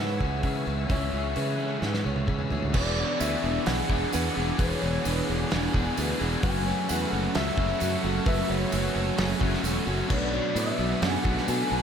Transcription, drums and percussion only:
0.21 kick medium
0.43 kick medium
0.43 open hi-hat medium
0.90 kick loud
0.90 open hi-hat medium
1.36 open hi-hat medium
1.82 snare medium
1.94 snare medium
2.04 high tom medium
2.16 high tom medium
2.27 kick medium
2.27 mid tom medium
2.38 mid tom medium
2.50 floor tom medium
2.62 floor tom medium
2.74 kick loud
2.74 crash loud
3.20 open hi-hat soft
3.20 tambourine loud
3.66 snare loud
3.66 open hi-hat medium
3.90 kick medium
4.13 open hi-hat medium
4.13 tambourine loud
4.59 kick loud
4.59 open hi-hat medium
5.05 open hi-hat medium
5.05 tambourine loud
5.51 snare loud
5.51 open hi-hat medium
5.74 kick medium
5.97 open hi-hat medium
5.97 tambourine medium
6.43 kick loud
6.43 open hi-hat medium
6.89 open hi-hat medium
6.89 tambourine loud
7.35 snare loud
7.35 open hi-hat medium
7.58 kick medium
7.80 open hi-hat medium
7.80 tambourine medium
8.26 kick loud
8.26 open hi-hat medium
8.72 open hi-hat medium
8.72 tambourine loud
9.18 snare loud
9.18 open hi-hat medium
9.41 kick medium
9.53 snare soft
9.64 open hi-hat medium
9.64 tambourine medium
10.10 kick loud
10.10 crash loud
10.56 open hi-hat medium
10.56 tambourine medium
11.02 snare loud
11.02 open hi-hat medium
11.25 kick loud
11.37 snare soft
11.48 open hi-hat medium
11.48 tambourine medium

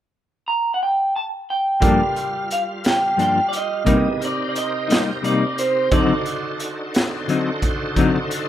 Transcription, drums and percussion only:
1.82 kick medium
1.82 closed hi-hat medium
2.16 closed hi-hat soft
2.51 closed hi-hat soft
2.84 snare medium
2.84 closed hi-hat medium
3.19 closed hi-hat soft
3.53 closed hi-hat soft
3.86 kick medium
3.86 closed hi-hat medium
4.22 closed hi-hat soft
4.55 closed hi-hat soft
4.90 snare medium
4.90 closed hi-hat medium
5.24 closed hi-hat soft
5.58 closed hi-hat soft
5.91 kick medium
5.91 closed hi-hat medium
6.26 closed hi-hat soft
6.60 closed hi-hat soft
6.94 snare medium
6.94 closed hi-hat medium
7.29 closed hi-hat soft
7.62 kick medium
7.62 closed hi-hat soft
7.96 kick medium
7.96 closed hi-hat medium
8.31 closed hi-hat medium

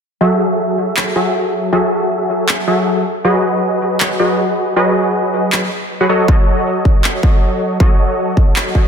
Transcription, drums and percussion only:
0.97 clap medium
2.49 clap medium
4.00 clap medium
5.52 clap medium
6.28 kick loud
6.85 kick medium
7.04 clap medium
7.23 kick medium
7.80 kick loud
8.37 kick medium
8.56 clap medium
8.75 kick medium

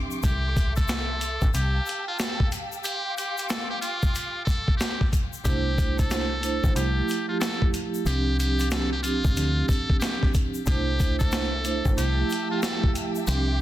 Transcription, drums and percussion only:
0.11 shaker medium
0.23 kick loud
0.23 closed hi-hat medium
0.23 shaker medium
0.56 kick medium
0.56 closed hi-hat medium
0.56 shaker medium
0.76 kick loud
0.76 closed hi-hat medium
0.76 shaker medium
0.88 snare loud
0.88 closed hi-hat loud
0.88 shaker medium
1.21 closed hi-hat medium
1.21 shaker medium
1.41 kick loud
1.41 shaker medium
1.54 closed hi-hat loud
1.54 shaker medium
1.86 closed hi-hat medium
1.86 shaker medium
2.19 snare loud
2.19 closed hi-hat loud
2.19 shaker medium
2.40 kick medium
2.52 closed hi-hat medium
2.52 shaker soft
2.72 shaker medium
2.84 closed hi-hat medium
2.84 shaker medium
3.18 closed hi-hat medium
3.18 shaker medium
3.38 closed hi-hat medium
3.38 shaker medium
3.49 snare loud
3.49 closed hi-hat loud
3.49 shaker medium
3.82 closed hi-hat medium
3.82 shaker medium
4.02 kick medium
4.02 shaker soft
4.15 closed hi-hat loud
4.15 shaker medium
4.47 kick loud
4.47 closed hi-hat medium
4.47 shaker medium
4.68 kick loud
4.80 snare loud
4.80 closed hi-hat loud
4.80 shaker medium
5.01 kick loud
5.01 snare soft
5.13 kick medium
5.13 closed hi-hat medium
5.13 shaker soft
5.33 shaker medium
5.45 kick loud
5.45 closed hi-hat medium
5.45 shaker medium
5.78 kick loud
5.78 closed hi-hat medium
5.78 shaker medium
5.99 kick loud
5.99 closed hi-hat medium
5.99 shaker medium
6.11 snare loud
6.11 closed hi-hat loud
6.11 shaker medium
6.43 closed hi-hat medium
6.43 shaker medium
6.64 kick loud
6.64 shaker soft
6.76 closed hi-hat loud
6.76 shaker medium
7.08 closed hi-hat medium
7.08 shaker medium
7.41 snare loud
7.41 closed hi-hat loud
7.41 shaker medium
7.62 kick medium
7.74 closed hi-hat medium
7.74 shaker soft
7.94 shaker medium
8.06 closed hi-hat medium
8.06 shaker medium
8.40 closed hi-hat medium
8.40 shaker medium
8.59 closed hi-hat medium
8.59 shaker medium
8.71 snare loud
8.71 closed hi-hat loud
8.71 shaker medium
9.04 closed hi-hat medium
9.04 shaker medium
9.24 kick loud
9.24 shaker medium
9.37 closed hi-hat loud
9.37 shaker medium
9.69 kick loud
9.69 closed hi-hat medium
9.69 shaker medium
9.90 kick loud
10.01 snare loud
10.01 closed hi-hat loud
10.01 shaker medium
10.23 kick medium
10.23 snare soft
10.34 kick medium
10.34 closed hi-hat medium
10.34 shaker soft
10.54 shaker medium
10.66 kick loud
10.66 closed hi-hat medium
10.66 shaker medium
11.00 kick medium
11.00 closed hi-hat medium
11.00 shaker medium
11.20 kick loud
11.20 closed hi-hat medium
11.20 shaker medium
11.32 snare loud
11.32 closed hi-hat loud
11.32 shaker medium
11.65 closed hi-hat medium
11.65 shaker medium
11.85 kick loud
11.85 shaker soft
11.98 closed hi-hat loud
11.98 shaker medium
12.30 closed hi-hat medium
12.30 shaker medium
12.63 snare loud
12.63 closed hi-hat loud
12.63 shaker medium
12.84 kick medium
12.95 closed hi-hat medium
12.95 shaker soft
13.15 shaker medium
13.27 closed hi-hat medium
13.27 shaker medium

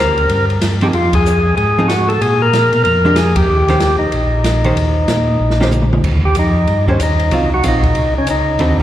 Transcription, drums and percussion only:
0.17 ride soft
0.29 ride medium
0.50 ride soft
0.61 snare medium
0.61 hi-hat pedal medium
0.61 ride medium
0.81 ride soft
0.93 ride medium
1.13 kick medium
1.13 ride medium
1.26 hi-hat pedal medium
1.57 ride soft
1.89 snare medium
1.89 hi-hat pedal medium
1.89 ride medium
2.10 ride soft
2.22 ride medium
2.53 snare medium
2.53 hi-hat pedal medium
2.53 ride medium
2.73 ride soft
2.85 ride soft
3.16 snare medium
3.16 hi-hat pedal medium
3.16 ride medium
3.36 kick medium
3.36 ride medium
3.68 snare soft
3.68 ride soft
3.80 snare medium
3.80 hi-hat pedal soft
3.80 ride medium
4.12 ride medium
4.44 snare medium
4.44 hi-hat pedal medium
4.44 ride medium
4.64 ride soft
4.77 ride medium
5.08 snare medium
5.08 hi-hat pedal medium
5.08 ride medium
5.50 snare soft
5.61 snare medium
5.71 hi-hat pedal medium
5.71 mid tom medium
5.82 mid tom medium
5.93 mid tom medium
6.04 kick medium
6.04 crash medium
6.24 kick soft
6.35 hi-hat pedal soft
6.35 ride medium
6.67 ride soft
6.88 kick medium
7.00 hi-hat pedal medium
7.00 ride medium
7.19 ride soft
7.31 ride medium
7.63 hi-hat pedal soft
7.63 ride medium
7.83 kick medium
7.83 ride soft
7.95 ride medium
8.27 hi-hat pedal medium
8.27 ride medium
8.59 ride medium
8.79 kick soft

